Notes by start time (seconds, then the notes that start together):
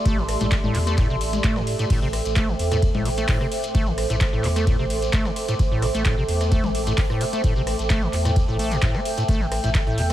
Already playing: A3 G4 A4 D5 E5 A5 C6
0.05 A1 A3, kick, closed hi-hat, ride, shekere
0.18 D3, shekere
0.28 cross-stick, open hi-hat, ride
0.40 A1 A2, closed hi-hat, low conga, shekere
0.51 kick, snare, clap, closed hi-hat, ride, shekere
0.64 A2, low conga, shekere
0.75 E2 C3, clap, open hi-hat, ride
0.87 A3, cross-stick, snare, closed hi-hat, shekere
0.98 A2, kick, snare, clap, closed hi-hat, ride
1.10 A1 C3, shekere
1.21 open hi-hat, ride
1.33 D6, snare, closed hi-hat, low conga, shekere
1.44 A2 A3, kick, clap, closed hi-hat, ride, shekere
1.51 G5
1.56 D3, cross-stick, snare, shekere
1.67 open hi-hat, ride
1.79 A2, closed hi-hat, shekere
1.90 A1 A2 A4 C5, kick, closed hi-hat, crash, ride, shekere
2.02 C3, shekere
2.13 cross-stick, open hi-hat, ride
2.25 A1, closed hi-hat, shekere
2.36 A3, kick, snare, clap, closed hi-hat, ride, shekere
2.48 D3, shekere
2.59 E2, open hi-hat, ride
2.72 A2, cross-stick, snare, closed hi-hat, shekere
2.82 kick, closed hi-hat, ride, shekere
2.95 A1 A2, snare, low conga, shekere
3.05 C3, open hi-hat, ride
3.18 A3, closed hi-hat, ride, shekere
3.29 A1 A2, kick, snare, clap, closed hi-hat, open hi-hat, ride, shekere
3.40 C3, cross-stick, shekere
3.52 open hi-hat, ride
3.63 closed hi-hat, shekere
3.75 A1 A3, kick, closed hi-hat, ride, shekere
3.86 D3, shekere
3.98 cross-stick, open hi-hat, ride
4.10 A1 A2, closed hi-hat, shekere
4.21 kick, snare, clap, closed hi-hat, ride
4.33 A2, shekere
4.44 E2 C3, clap, open hi-hat, ride
4.56 A3, cross-stick, snare, closed hi-hat, shekere
4.67 A2, kick, closed hi-hat, ride, shekere
4.79 A1 C3, shekere
4.90 open hi-hat, ride
5.02 closed hi-hat, ride, shekere
5.13 A1 A3, kick, snare, clap, closed hi-hat, ride, shekere
5.25 D3, cross-stick, snare, shekere
5.36 open hi-hat, ride
5.48 A2, closed hi-hat, shekere
5.59 A1, kick, closed hi-hat, ride, shekere
5.72 A2, shekere
5.82 C3, cross-stick, open hi-hat, ride
5.94 A1 A3, closed hi-hat, shekere
6.05 A2, kick, snare, clap, closed hi-hat, ride, shekere
6.18 C3, shekere
6.29 E2, open hi-hat, ride
6.41 cross-stick, snare, closed hi-hat, shekere
6.51 A3, kick, closed hi-hat, ride, shekere
6.64 A1 D3, snare, low conga, shekere
6.75 open hi-hat, ride
6.87 A2, closed hi-hat, ride, shekere
6.98 A1, kick, snare, clap, closed hi-hat, open hi-hat, ride
7.10 A2, cross-stick, shekere
7.21 C3, open hi-hat, ride
7.33 A3, closed hi-hat, shekere
7.44 A1 A2, kick, closed hi-hat, ride, shekere
7.56 C3, shekere
7.67 cross-stick, open hi-hat, ride
7.79 A1, closed hi-hat, shekere
7.90 A3, kick, snare, clap, closed hi-hat, ride, shekere
8.01 D3, shekere
8.13 E2, clap, open hi-hat, ride
8.25 A2, cross-stick, snare, closed hi-hat, shekere
8.36 kick, closed hi-hat, ride, shekere
8.48 A1 A2, shekere
8.59 A3, open hi-hat, ride
8.71 A2 G6, closed hi-hat, ride, shekere
8.82 A1 A2, kick, snare, clap, closed hi-hat, ride
8.95 C4, cross-stick, snare, shekere
9.05 open hi-hat, ride
9.17 A2, closed hi-hat, shekere
9.29 A1 A3 E5, kick, closed hi-hat, ride, shekere
9.41 D3, shekere
9.52 cross-stick, open hi-hat, ride
9.63 A1 A2, closed hi-hat, shekere
9.75 kick, snare, clap, closed hi-hat, ride, shekere
9.86 A2, shekere
9.98 E2 C3, open hi-hat, ride